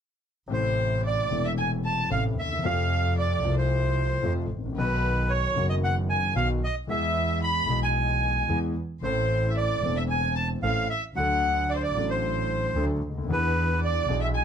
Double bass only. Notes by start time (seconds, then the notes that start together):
0.50 A1
1.30 E1
2.10 A1
2.37 D#2
2.63 F2
3.43 C2
4.23 F2
4.50 A1
4.76 B1
5.54 F#1
6.34 B1
6.87 E2
7.67 B1
8.47 E2
9.01 A1
9.82 E1
10.62 A1
11.15 D2
11.95 A1
12.74 D2
13.02 D2
13.28 E2
14.08 B1